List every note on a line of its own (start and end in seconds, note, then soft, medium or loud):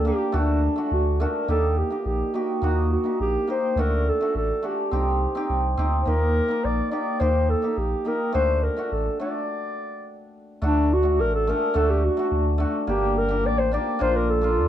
0.00 0.11 D2 medium
0.05 0.20 A#3 medium
0.05 0.20 D4 medium
0.05 0.21 G4 medium
0.05 0.38 G4 medium
0.32 0.68 D2 loud
0.32 0.55 A3 medium
0.32 0.55 D4 medium
0.32 0.56 F#4 medium
0.36 0.93 D4 medium
0.76 0.98 A3 medium
0.76 0.99 D4 medium
0.76 0.99 F#4 medium
0.91 1.26 D2 loud
0.91 1.22 F#4 medium
1.20 1.35 A3 medium
1.20 1.35 D4 medium
1.20 1.35 F#4 medium
1.20 1.49 A#4 medium
1.48 1.83 D#2 medium
1.48 1.70 A#3 medium
1.48 1.71 D#4 medium
1.48 1.71 G4 medium
1.48 1.80 A4 loud
1.78 2.06 G4 medium
1.90 2.13 A#3 medium
1.90 2.13 D#4 soft
1.90 2.14 G4 medium
2.06 2.23 A#1 medium
2.06 2.36 G4 medium
2.34 2.49 A#3 medium
2.34 2.49 D#4 medium
2.34 2.92 F#4 medium
2.34 2.50 G4 medium
2.62 2.97 D#2 medium
2.62 2.84 A#3 medium
2.62 2.85 D#4 medium
2.62 2.85 F#4 medium
2.92 3.19 F#4 medium
3.04 3.27 A#3 medium
3.04 3.27 D#4 medium
3.04 3.28 G4 medium
3.20 3.38 A#1 medium
3.20 3.48 G4 medium
3.48 3.63 A#3 medium
3.48 3.63 D#4 medium
3.48 3.64 G4 medium
3.48 3.81 C5 medium
3.76 4.11 D2 loud
3.76 3.99 A3 medium
3.76 4.00 D4 medium
3.76 4.00 F#4 medium
3.76 4.11 A#4 loud
4.09 4.36 A4 medium
4.21 4.42 A3 medium
4.21 4.43 D4 medium
4.21 4.43 F#4 medium
4.35 4.52 A1 medium
4.35 4.67 A4 medium
4.62 4.77 A3 medium
4.62 4.78 D4 medium
4.62 4.78 F#4 medium
4.62 5.79 G4 medium
4.91 5.27 C2 loud
4.91 5.13 C4 medium
4.91 5.14 D#4 medium
4.91 5.14 G4 medium
5.35 5.56 C4 medium
5.35 5.57 D#4 medium
5.35 5.58 G4 medium
5.50 5.75 C2 medium
5.77 6.04 D2 medium
5.77 5.92 C4 medium
5.77 5.93 D#4 medium
5.77 5.93 G4 medium
6.01 6.10 C5 medium
6.05 6.41 D#2 loud
6.05 6.28 A#3 medium
6.05 6.28 D#4 medium
6.05 6.29 G4 medium
6.05 6.66 A#4 loud
6.48 6.70 A#3 medium
6.48 6.71 D#4 medium
6.48 6.72 A#4 medium
6.65 6.82 A#1 medium
6.65 6.91 D5 medium
6.91 7.06 A#3 medium
6.91 7.06 D#4 medium
6.91 7.07 G4 medium
6.91 7.21 D5 loud
7.20 7.55 D#2 loud
7.20 7.42 A#3 medium
7.20 7.42 D#4 medium
7.20 7.43 G4 medium
7.20 7.51 C5 loud
7.50 7.79 A4 medium
7.62 7.84 A#3 medium
7.62 7.85 D#4 medium
7.62 7.85 G4 medium
7.77 7.95 A#1 medium
7.77 8.09 G4 medium
8.05 8.20 A#3 medium
8.05 8.20 D#4 medium
8.05 8.21 G4 medium
8.05 8.34 A#4 medium
8.32 8.69 D2 medium
8.32 8.55 A3 medium
8.32 8.56 D4 medium
8.32 8.56 F#4 medium
8.32 8.65 C5 loud
8.63 8.94 A#4 medium
8.76 8.99 A3 medium
8.76 8.99 D4 medium
8.76 9.00 F#4 medium
8.92 9.09 A1 medium
8.92 9.20 A4 medium
9.19 9.34 A3 medium
9.19 9.35 D4 medium
9.19 9.35 F#4 medium
9.19 10.30 D5 medium
10.61 11.20 D2 medium
10.61 10.83 A3 medium
10.61 10.83 D4 medium
10.61 10.95 D4 loud
10.61 10.84 F#4 medium
10.93 11.22 F#4 loud
11.03 11.25 A3 medium
11.03 11.25 D4 medium
11.03 11.26 F#4 medium
11.19 11.53 A1 medium
11.19 11.34 A#4 loud
11.35 11.51 A4 medium
11.47 11.61 A3 medium
11.47 11.62 D4 medium
11.47 11.62 A4 medium
11.47 11.78 A#4 loud
11.74 12.09 D2 loud
11.74 11.96 A3 medium
11.74 11.96 D4 medium
11.74 11.97 F#4 medium
11.74 11.92 A4 loud
11.90 12.06 G4 medium
12.05 12.61 F#4 loud
12.17 12.39 A3 medium
12.17 12.39 D4 medium
12.17 12.40 F#4 medium
12.32 12.66 D2 medium
12.58 12.73 A3 medium
12.58 12.74 D4 medium
12.58 12.74 F#4 medium
12.87 13.46 G1 loud
12.87 13.09 A#3 medium
12.87 13.09 D4 medium
12.87 13.10 G4 medium
12.87 13.20 G4 medium
13.18 13.48 A#4 loud
13.29 13.51 A#3 medium
13.29 13.51 D4 medium
13.29 13.52 G4 medium
13.45 13.78 A1 medium
13.45 13.61 D5 loud
13.59 13.73 C5 medium
13.72 13.86 A#3 medium
13.72 13.87 D4 medium
13.72 13.87 G4 medium
13.72 14.03 D5 loud
13.99 14.59 A#1 loud
13.99 14.21 A#3 medium
13.99 14.22 D4 medium
13.99 14.22 F4 medium
13.99 14.18 C5 loud
14.16 14.32 A#4 loud
14.30 14.68 A4 medium
14.41 14.63 A#3 medium
14.41 14.64 D4 medium
14.41 14.65 F4 medium
14.58 14.68 F2 medium